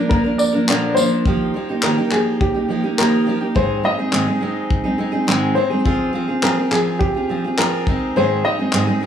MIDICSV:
0, 0, Header, 1, 4, 480
1, 0, Start_track
1, 0, Key_signature, -3, "major"
1, 0, Tempo, 574713
1, 1050, Time_signature, 4, 2, 24, 8
1, 7568, End_track
2, 0, Start_track
2, 0, Title_t, "Upright piano"
2, 0, Program_c, 0, 0
2, 78, Note_on_c, 0, 70, 76
2, 307, Note_off_c, 0, 70, 0
2, 320, Note_on_c, 0, 74, 77
2, 771, Note_off_c, 0, 74, 0
2, 790, Note_on_c, 0, 72, 81
2, 1531, Note_on_c, 0, 70, 73
2, 1541, Note_off_c, 0, 72, 0
2, 1753, Note_off_c, 0, 70, 0
2, 1773, Note_on_c, 0, 68, 72
2, 2010, Note_on_c, 0, 67, 66
2, 2018, Note_off_c, 0, 68, 0
2, 2456, Note_off_c, 0, 67, 0
2, 2492, Note_on_c, 0, 70, 82
2, 2937, Note_off_c, 0, 70, 0
2, 2973, Note_on_c, 0, 72, 80
2, 3195, Note_off_c, 0, 72, 0
2, 3215, Note_on_c, 0, 75, 93
2, 3899, Note_off_c, 0, 75, 0
2, 4636, Note_on_c, 0, 72, 72
2, 5372, Note_on_c, 0, 70, 76
2, 5384, Note_off_c, 0, 72, 0
2, 5609, Note_on_c, 0, 68, 74
2, 5618, Note_off_c, 0, 70, 0
2, 5832, Note_off_c, 0, 68, 0
2, 5840, Note_on_c, 0, 67, 77
2, 6291, Note_off_c, 0, 67, 0
2, 6333, Note_on_c, 0, 70, 84
2, 6822, Note_on_c, 0, 72, 81
2, 6826, Note_off_c, 0, 70, 0
2, 7055, Note_on_c, 0, 75, 91
2, 7063, Note_off_c, 0, 72, 0
2, 7568, Note_off_c, 0, 75, 0
2, 7568, End_track
3, 0, Start_track
3, 0, Title_t, "Steel-string acoustic guitar"
3, 0, Program_c, 1, 25
3, 0, Note_on_c, 1, 62, 53
3, 0, Note_on_c, 1, 70, 47
3, 78, Note_on_c, 1, 53, 54
3, 86, Note_off_c, 1, 62, 0
3, 87, Note_off_c, 1, 70, 0
3, 88, Note_on_c, 1, 58, 60
3, 96, Note_on_c, 1, 62, 55
3, 103, Note_on_c, 1, 70, 65
3, 188, Note_off_c, 1, 70, 0
3, 195, Note_off_c, 1, 62, 0
3, 198, Note_on_c, 1, 70, 51
3, 204, Note_off_c, 1, 53, 0
3, 205, Note_on_c, 1, 62, 44
3, 206, Note_off_c, 1, 58, 0
3, 216, Note_on_c, 1, 58, 46
3, 221, Note_on_c, 1, 53, 40
3, 431, Note_off_c, 1, 70, 0
3, 441, Note_on_c, 1, 70, 52
3, 442, Note_off_c, 1, 62, 0
3, 450, Note_off_c, 1, 58, 0
3, 452, Note_on_c, 1, 62, 53
3, 456, Note_off_c, 1, 53, 0
3, 460, Note_on_c, 1, 58, 48
3, 467, Note_on_c, 1, 53, 42
3, 565, Note_off_c, 1, 53, 0
3, 565, Note_off_c, 1, 70, 0
3, 565, Note_on_c, 1, 46, 73
3, 567, Note_off_c, 1, 58, 0
3, 569, Note_on_c, 1, 50, 79
3, 571, Note_off_c, 1, 62, 0
3, 575, Note_on_c, 1, 53, 73
3, 577, Note_on_c, 1, 58, 76
3, 580, Note_on_c, 1, 62, 78
3, 585, Note_on_c, 1, 70, 80
3, 793, Note_off_c, 1, 53, 0
3, 803, Note_off_c, 1, 58, 0
3, 803, Note_on_c, 1, 53, 59
3, 807, Note_off_c, 1, 46, 0
3, 809, Note_off_c, 1, 50, 0
3, 811, Note_off_c, 1, 62, 0
3, 813, Note_on_c, 1, 58, 57
3, 816, Note_off_c, 1, 70, 0
3, 821, Note_on_c, 1, 62, 62
3, 826, Note_on_c, 1, 70, 57
3, 1046, Note_off_c, 1, 53, 0
3, 1051, Note_off_c, 1, 58, 0
3, 1054, Note_on_c, 1, 51, 70
3, 1055, Note_off_c, 1, 62, 0
3, 1058, Note_off_c, 1, 70, 0
3, 1058, Note_on_c, 1, 53, 65
3, 1062, Note_on_c, 1, 58, 76
3, 1063, Note_on_c, 1, 63, 66
3, 1070, Note_on_c, 1, 67, 67
3, 1277, Note_off_c, 1, 53, 0
3, 1287, Note_on_c, 1, 53, 51
3, 1290, Note_off_c, 1, 58, 0
3, 1292, Note_off_c, 1, 51, 0
3, 1296, Note_off_c, 1, 63, 0
3, 1299, Note_off_c, 1, 67, 0
3, 1300, Note_on_c, 1, 58, 50
3, 1305, Note_on_c, 1, 63, 52
3, 1310, Note_on_c, 1, 67, 56
3, 1400, Note_off_c, 1, 67, 0
3, 1408, Note_off_c, 1, 53, 0
3, 1410, Note_on_c, 1, 67, 42
3, 1415, Note_off_c, 1, 58, 0
3, 1417, Note_off_c, 1, 63, 0
3, 1426, Note_on_c, 1, 63, 38
3, 1431, Note_on_c, 1, 58, 35
3, 1530, Note_off_c, 1, 58, 0
3, 1530, Note_off_c, 1, 67, 0
3, 1530, Note_on_c, 1, 51, 69
3, 1534, Note_off_c, 1, 63, 0
3, 1535, Note_on_c, 1, 53, 67
3, 1540, Note_on_c, 1, 58, 63
3, 1544, Note_on_c, 1, 63, 73
3, 1546, Note_on_c, 1, 67, 79
3, 1643, Note_off_c, 1, 67, 0
3, 1650, Note_off_c, 1, 51, 0
3, 1652, Note_off_c, 1, 53, 0
3, 1653, Note_on_c, 1, 67, 43
3, 1654, Note_off_c, 1, 58, 0
3, 1655, Note_off_c, 1, 63, 0
3, 1665, Note_on_c, 1, 63, 41
3, 1675, Note_on_c, 1, 58, 38
3, 1762, Note_off_c, 1, 58, 0
3, 1765, Note_on_c, 1, 53, 50
3, 1769, Note_off_c, 1, 63, 0
3, 1771, Note_off_c, 1, 67, 0
3, 1772, Note_on_c, 1, 58, 57
3, 1779, Note_on_c, 1, 63, 52
3, 1789, Note_on_c, 1, 67, 60
3, 2113, Note_off_c, 1, 67, 0
3, 2123, Note_on_c, 1, 67, 46
3, 2126, Note_off_c, 1, 63, 0
3, 2127, Note_off_c, 1, 53, 0
3, 2131, Note_off_c, 1, 58, 0
3, 2136, Note_on_c, 1, 63, 44
3, 2148, Note_on_c, 1, 58, 36
3, 2243, Note_on_c, 1, 53, 45
3, 2244, Note_off_c, 1, 58, 0
3, 2246, Note_off_c, 1, 67, 0
3, 2247, Note_off_c, 1, 63, 0
3, 2254, Note_on_c, 1, 58, 52
3, 2257, Note_on_c, 1, 63, 52
3, 2264, Note_on_c, 1, 67, 58
3, 2357, Note_off_c, 1, 67, 0
3, 2366, Note_off_c, 1, 53, 0
3, 2366, Note_off_c, 1, 63, 0
3, 2367, Note_on_c, 1, 67, 49
3, 2371, Note_off_c, 1, 58, 0
3, 2376, Note_on_c, 1, 63, 44
3, 2388, Note_on_c, 1, 58, 38
3, 2488, Note_off_c, 1, 67, 0
3, 2489, Note_off_c, 1, 58, 0
3, 2490, Note_on_c, 1, 51, 65
3, 2493, Note_off_c, 1, 63, 0
3, 2497, Note_on_c, 1, 53, 72
3, 2499, Note_on_c, 1, 58, 72
3, 2501, Note_on_c, 1, 63, 71
3, 2509, Note_on_c, 1, 67, 69
3, 2718, Note_off_c, 1, 53, 0
3, 2727, Note_off_c, 1, 58, 0
3, 2728, Note_on_c, 1, 53, 51
3, 2730, Note_off_c, 1, 51, 0
3, 2733, Note_off_c, 1, 63, 0
3, 2737, Note_on_c, 1, 58, 59
3, 2739, Note_off_c, 1, 67, 0
3, 2743, Note_on_c, 1, 63, 58
3, 2749, Note_on_c, 1, 67, 62
3, 2832, Note_off_c, 1, 67, 0
3, 2842, Note_on_c, 1, 67, 43
3, 2844, Note_off_c, 1, 63, 0
3, 2849, Note_off_c, 1, 53, 0
3, 2853, Note_off_c, 1, 58, 0
3, 2854, Note_on_c, 1, 63, 38
3, 2864, Note_on_c, 1, 58, 37
3, 2963, Note_on_c, 1, 44, 66
3, 2966, Note_off_c, 1, 67, 0
3, 2966, Note_on_c, 1, 51, 67
3, 2968, Note_off_c, 1, 63, 0
3, 2969, Note_off_c, 1, 58, 0
3, 2971, Note_on_c, 1, 56, 63
3, 2972, Note_on_c, 1, 60, 68
3, 2978, Note_on_c, 1, 63, 76
3, 2979, Note_on_c, 1, 68, 75
3, 3192, Note_off_c, 1, 56, 0
3, 3201, Note_off_c, 1, 60, 0
3, 3202, Note_on_c, 1, 56, 50
3, 3206, Note_off_c, 1, 44, 0
3, 3208, Note_off_c, 1, 51, 0
3, 3210, Note_off_c, 1, 63, 0
3, 3211, Note_on_c, 1, 60, 48
3, 3214, Note_off_c, 1, 68, 0
3, 3220, Note_on_c, 1, 63, 57
3, 3226, Note_on_c, 1, 68, 58
3, 3312, Note_off_c, 1, 68, 0
3, 3321, Note_off_c, 1, 63, 0
3, 3322, Note_on_c, 1, 68, 44
3, 3326, Note_off_c, 1, 56, 0
3, 3327, Note_off_c, 1, 60, 0
3, 3331, Note_on_c, 1, 63, 44
3, 3337, Note_on_c, 1, 60, 38
3, 3343, Note_on_c, 1, 56, 33
3, 3437, Note_off_c, 1, 56, 0
3, 3439, Note_off_c, 1, 60, 0
3, 3440, Note_on_c, 1, 44, 65
3, 3442, Note_off_c, 1, 63, 0
3, 3446, Note_off_c, 1, 68, 0
3, 3446, Note_on_c, 1, 51, 70
3, 3447, Note_on_c, 1, 56, 79
3, 3449, Note_on_c, 1, 60, 75
3, 3452, Note_on_c, 1, 63, 77
3, 3456, Note_on_c, 1, 68, 85
3, 3547, Note_off_c, 1, 68, 0
3, 3557, Note_on_c, 1, 68, 44
3, 3558, Note_off_c, 1, 63, 0
3, 3564, Note_off_c, 1, 60, 0
3, 3565, Note_off_c, 1, 44, 0
3, 3568, Note_off_c, 1, 51, 0
3, 3568, Note_off_c, 1, 56, 0
3, 3568, Note_on_c, 1, 63, 45
3, 3574, Note_on_c, 1, 60, 41
3, 3582, Note_on_c, 1, 56, 34
3, 3672, Note_off_c, 1, 56, 0
3, 3682, Note_on_c, 1, 56, 57
3, 3683, Note_off_c, 1, 68, 0
3, 3684, Note_off_c, 1, 60, 0
3, 3689, Note_off_c, 1, 63, 0
3, 3694, Note_on_c, 1, 60, 55
3, 3699, Note_on_c, 1, 63, 54
3, 3706, Note_on_c, 1, 68, 55
3, 4030, Note_off_c, 1, 68, 0
3, 4040, Note_off_c, 1, 63, 0
3, 4040, Note_on_c, 1, 68, 51
3, 4046, Note_off_c, 1, 56, 0
3, 4049, Note_off_c, 1, 60, 0
3, 4050, Note_on_c, 1, 63, 47
3, 4059, Note_on_c, 1, 60, 45
3, 4063, Note_on_c, 1, 56, 43
3, 4149, Note_off_c, 1, 56, 0
3, 4156, Note_off_c, 1, 60, 0
3, 4159, Note_on_c, 1, 56, 55
3, 4165, Note_off_c, 1, 68, 0
3, 4166, Note_on_c, 1, 60, 56
3, 4167, Note_off_c, 1, 63, 0
3, 4177, Note_on_c, 1, 63, 61
3, 4182, Note_on_c, 1, 68, 59
3, 4264, Note_off_c, 1, 68, 0
3, 4273, Note_off_c, 1, 63, 0
3, 4274, Note_on_c, 1, 68, 59
3, 4280, Note_off_c, 1, 60, 0
3, 4283, Note_on_c, 1, 63, 54
3, 4284, Note_off_c, 1, 56, 0
3, 4290, Note_on_c, 1, 60, 51
3, 4297, Note_on_c, 1, 56, 44
3, 4399, Note_off_c, 1, 56, 0
3, 4401, Note_on_c, 1, 44, 74
3, 4402, Note_off_c, 1, 68, 0
3, 4403, Note_off_c, 1, 60, 0
3, 4404, Note_off_c, 1, 63, 0
3, 4406, Note_on_c, 1, 51, 75
3, 4409, Note_on_c, 1, 56, 82
3, 4413, Note_on_c, 1, 60, 81
3, 4414, Note_on_c, 1, 63, 79
3, 4415, Note_on_c, 1, 68, 88
3, 4627, Note_off_c, 1, 56, 0
3, 4634, Note_off_c, 1, 60, 0
3, 4637, Note_on_c, 1, 56, 55
3, 4642, Note_off_c, 1, 63, 0
3, 4644, Note_on_c, 1, 60, 54
3, 4645, Note_off_c, 1, 44, 0
3, 4648, Note_off_c, 1, 51, 0
3, 4649, Note_off_c, 1, 68, 0
3, 4652, Note_on_c, 1, 63, 56
3, 4659, Note_on_c, 1, 68, 56
3, 4751, Note_off_c, 1, 68, 0
3, 4760, Note_off_c, 1, 63, 0
3, 4761, Note_on_c, 1, 68, 46
3, 4763, Note_off_c, 1, 56, 0
3, 4767, Note_off_c, 1, 60, 0
3, 4770, Note_on_c, 1, 63, 43
3, 4777, Note_on_c, 1, 60, 38
3, 4785, Note_on_c, 1, 56, 38
3, 4880, Note_off_c, 1, 56, 0
3, 4881, Note_off_c, 1, 60, 0
3, 4884, Note_on_c, 1, 53, 69
3, 4885, Note_off_c, 1, 68, 0
3, 4889, Note_off_c, 1, 63, 0
3, 4892, Note_on_c, 1, 60, 74
3, 4893, Note_on_c, 1, 65, 73
3, 4898, Note_on_c, 1, 68, 78
3, 5107, Note_off_c, 1, 53, 0
3, 5117, Note_off_c, 1, 60, 0
3, 5117, Note_on_c, 1, 53, 54
3, 5126, Note_off_c, 1, 65, 0
3, 5127, Note_on_c, 1, 60, 51
3, 5130, Note_off_c, 1, 68, 0
3, 5136, Note_on_c, 1, 65, 57
3, 5140, Note_on_c, 1, 68, 67
3, 5231, Note_off_c, 1, 68, 0
3, 5241, Note_on_c, 1, 68, 43
3, 5243, Note_off_c, 1, 53, 0
3, 5243, Note_off_c, 1, 65, 0
3, 5248, Note_off_c, 1, 60, 0
3, 5253, Note_on_c, 1, 65, 44
3, 5260, Note_on_c, 1, 60, 38
3, 5359, Note_off_c, 1, 60, 0
3, 5365, Note_off_c, 1, 68, 0
3, 5365, Note_on_c, 1, 53, 65
3, 5367, Note_off_c, 1, 65, 0
3, 5369, Note_on_c, 1, 60, 79
3, 5377, Note_on_c, 1, 65, 74
3, 5378, Note_on_c, 1, 68, 88
3, 5475, Note_off_c, 1, 68, 0
3, 5485, Note_off_c, 1, 65, 0
3, 5485, Note_on_c, 1, 68, 42
3, 5487, Note_off_c, 1, 53, 0
3, 5489, Note_off_c, 1, 60, 0
3, 5495, Note_on_c, 1, 65, 45
3, 5507, Note_on_c, 1, 60, 35
3, 5604, Note_off_c, 1, 60, 0
3, 5605, Note_on_c, 1, 53, 50
3, 5607, Note_off_c, 1, 68, 0
3, 5609, Note_off_c, 1, 65, 0
3, 5614, Note_on_c, 1, 60, 51
3, 5619, Note_on_c, 1, 65, 54
3, 5627, Note_on_c, 1, 68, 63
3, 5958, Note_off_c, 1, 68, 0
3, 5967, Note_off_c, 1, 53, 0
3, 5968, Note_on_c, 1, 68, 43
3, 5972, Note_off_c, 1, 60, 0
3, 5972, Note_off_c, 1, 65, 0
3, 5982, Note_on_c, 1, 65, 43
3, 5993, Note_on_c, 1, 60, 37
3, 6088, Note_off_c, 1, 60, 0
3, 6089, Note_off_c, 1, 68, 0
3, 6091, Note_on_c, 1, 53, 48
3, 6096, Note_off_c, 1, 65, 0
3, 6098, Note_on_c, 1, 60, 49
3, 6105, Note_on_c, 1, 65, 54
3, 6110, Note_on_c, 1, 68, 54
3, 6206, Note_off_c, 1, 68, 0
3, 6210, Note_off_c, 1, 53, 0
3, 6214, Note_off_c, 1, 60, 0
3, 6216, Note_on_c, 1, 68, 47
3, 6217, Note_off_c, 1, 65, 0
3, 6228, Note_on_c, 1, 65, 47
3, 6243, Note_on_c, 1, 60, 38
3, 6330, Note_off_c, 1, 60, 0
3, 6333, Note_off_c, 1, 68, 0
3, 6335, Note_off_c, 1, 65, 0
3, 6335, Note_on_c, 1, 53, 61
3, 6340, Note_on_c, 1, 60, 70
3, 6345, Note_on_c, 1, 65, 78
3, 6350, Note_on_c, 1, 68, 73
3, 6572, Note_off_c, 1, 53, 0
3, 6575, Note_off_c, 1, 60, 0
3, 6576, Note_on_c, 1, 56, 51
3, 6577, Note_off_c, 1, 65, 0
3, 6580, Note_off_c, 1, 68, 0
3, 6588, Note_on_c, 1, 60, 57
3, 6594, Note_on_c, 1, 63, 57
3, 6602, Note_on_c, 1, 68, 57
3, 6813, Note_off_c, 1, 56, 0
3, 6816, Note_off_c, 1, 60, 0
3, 6816, Note_on_c, 1, 44, 65
3, 6816, Note_on_c, 1, 51, 67
3, 6819, Note_off_c, 1, 63, 0
3, 6819, Note_off_c, 1, 68, 0
3, 6823, Note_on_c, 1, 56, 71
3, 6826, Note_on_c, 1, 60, 70
3, 6829, Note_on_c, 1, 63, 75
3, 6829, Note_on_c, 1, 68, 86
3, 7043, Note_off_c, 1, 56, 0
3, 7053, Note_off_c, 1, 44, 0
3, 7053, Note_off_c, 1, 51, 0
3, 7053, Note_on_c, 1, 56, 52
3, 7054, Note_off_c, 1, 60, 0
3, 7059, Note_off_c, 1, 63, 0
3, 7059, Note_off_c, 1, 68, 0
3, 7064, Note_on_c, 1, 60, 59
3, 7070, Note_on_c, 1, 63, 57
3, 7077, Note_on_c, 1, 68, 54
3, 7158, Note_off_c, 1, 68, 0
3, 7167, Note_off_c, 1, 63, 0
3, 7168, Note_on_c, 1, 68, 42
3, 7171, Note_off_c, 1, 56, 0
3, 7173, Note_off_c, 1, 60, 0
3, 7177, Note_on_c, 1, 63, 42
3, 7183, Note_on_c, 1, 60, 35
3, 7192, Note_on_c, 1, 56, 35
3, 7289, Note_off_c, 1, 60, 0
3, 7289, Note_off_c, 1, 68, 0
3, 7290, Note_off_c, 1, 56, 0
3, 7292, Note_on_c, 1, 44, 75
3, 7293, Note_off_c, 1, 63, 0
3, 7295, Note_on_c, 1, 51, 73
3, 7299, Note_on_c, 1, 60, 67
3, 7300, Note_on_c, 1, 56, 74
3, 7305, Note_on_c, 1, 63, 70
3, 7307, Note_on_c, 1, 68, 75
3, 7395, Note_off_c, 1, 68, 0
3, 7405, Note_off_c, 1, 63, 0
3, 7405, Note_on_c, 1, 68, 44
3, 7410, Note_off_c, 1, 44, 0
3, 7412, Note_off_c, 1, 51, 0
3, 7412, Note_off_c, 1, 60, 0
3, 7414, Note_off_c, 1, 56, 0
3, 7415, Note_on_c, 1, 63, 43
3, 7422, Note_on_c, 1, 60, 38
3, 7427, Note_on_c, 1, 56, 38
3, 7517, Note_off_c, 1, 56, 0
3, 7527, Note_off_c, 1, 68, 0
3, 7527, Note_on_c, 1, 56, 52
3, 7528, Note_off_c, 1, 60, 0
3, 7532, Note_off_c, 1, 63, 0
3, 7538, Note_on_c, 1, 60, 56
3, 7568, Note_off_c, 1, 56, 0
3, 7568, Note_off_c, 1, 60, 0
3, 7568, End_track
4, 0, Start_track
4, 0, Title_t, "Drums"
4, 90, Note_on_c, 9, 36, 113
4, 174, Note_off_c, 9, 36, 0
4, 326, Note_on_c, 9, 54, 66
4, 410, Note_off_c, 9, 54, 0
4, 575, Note_on_c, 9, 39, 105
4, 658, Note_off_c, 9, 39, 0
4, 808, Note_on_c, 9, 54, 65
4, 891, Note_off_c, 9, 54, 0
4, 1048, Note_on_c, 9, 36, 101
4, 1132, Note_off_c, 9, 36, 0
4, 1525, Note_on_c, 9, 39, 94
4, 1609, Note_off_c, 9, 39, 0
4, 1767, Note_on_c, 9, 39, 65
4, 1850, Note_off_c, 9, 39, 0
4, 2011, Note_on_c, 9, 36, 93
4, 2095, Note_off_c, 9, 36, 0
4, 2499, Note_on_c, 9, 39, 93
4, 2582, Note_off_c, 9, 39, 0
4, 2971, Note_on_c, 9, 36, 98
4, 3055, Note_off_c, 9, 36, 0
4, 3450, Note_on_c, 9, 39, 86
4, 3533, Note_off_c, 9, 39, 0
4, 3930, Note_on_c, 9, 36, 100
4, 4013, Note_off_c, 9, 36, 0
4, 4418, Note_on_c, 9, 39, 90
4, 4501, Note_off_c, 9, 39, 0
4, 4890, Note_on_c, 9, 36, 91
4, 4974, Note_off_c, 9, 36, 0
4, 5373, Note_on_c, 9, 39, 94
4, 5456, Note_off_c, 9, 39, 0
4, 5614, Note_on_c, 9, 39, 74
4, 5697, Note_off_c, 9, 39, 0
4, 5852, Note_on_c, 9, 36, 101
4, 5935, Note_off_c, 9, 36, 0
4, 6336, Note_on_c, 9, 39, 95
4, 6419, Note_off_c, 9, 39, 0
4, 6572, Note_on_c, 9, 36, 92
4, 6655, Note_off_c, 9, 36, 0
4, 7291, Note_on_c, 9, 39, 90
4, 7374, Note_off_c, 9, 39, 0
4, 7568, End_track
0, 0, End_of_file